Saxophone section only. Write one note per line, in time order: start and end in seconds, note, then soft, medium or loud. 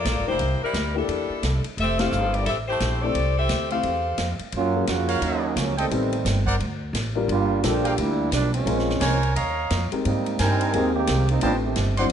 0.00 0.28 A#3 medium
0.00 0.28 F4 medium
0.00 0.28 A4 medium
0.00 0.28 D5 medium
0.29 0.60 A#3 medium
0.29 0.60 E4 medium
0.29 0.60 G4 medium
0.29 0.60 C5 loud
0.63 0.94 G3 medium
0.63 0.94 D4 medium
0.63 0.94 E4 medium
0.63 0.94 A#4 medium
0.98 1.66 G3 medium
0.98 1.66 D4 medium
0.98 1.66 E4 medium
0.98 1.66 A4 medium
1.79 1.98 C4 medium
1.79 1.98 G4 medium
1.79 1.98 A4 medium
1.79 1.98 E5 loud
2.00 2.34 C4 medium
2.00 2.33 G4 medium
2.00 2.34 A4 medium
2.00 2.34 F5 loud
2.34 2.47 A#3 medium
2.34 2.47 E4 medium
2.34 2.46 G4 medium
2.34 2.47 D5 medium
2.47 2.56 C4 medium
2.47 2.56 G4 medium
2.47 2.56 A4 medium
2.47 2.56 E5 medium
2.68 3.00 A3 medium
2.68 3.00 E4 medium
2.68 3.00 G4 medium
2.68 3.00 C5 medium
3.02 3.37 C4 medium
3.02 3.37 G4 medium
3.02 3.36 A4 medium
3.02 3.37 D5 medium
3.38 3.70 C4 medium
3.38 3.70 G4 medium
3.38 3.69 A4 medium
3.38 3.70 E5 medium
3.71 4.36 C4 medium
3.71 4.36 G4 medium
3.71 4.36 A4 medium
3.71 4.36 F5 medium